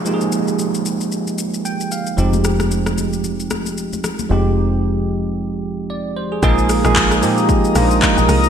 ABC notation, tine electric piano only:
X:1
M:4/4
L:1/16
Q:"Swing 16ths" 1/4=113
K:Bbdor
V:1 name="Tine electric piano"
z12 g2 f2 | z16 | z12 =d2 c A- | A z12 z3 |]
V:2 name="Tine electric piano"
[F,A,B,EGA]16 | [F,A,CEG]16 | [F,A,CEG]16 | [F,A,B,EA]2 z [F,A,B,EA]2 z [F,A,B,EG]3 z [F,A,B,=DEF]4- [F,A,B,DEF] z |]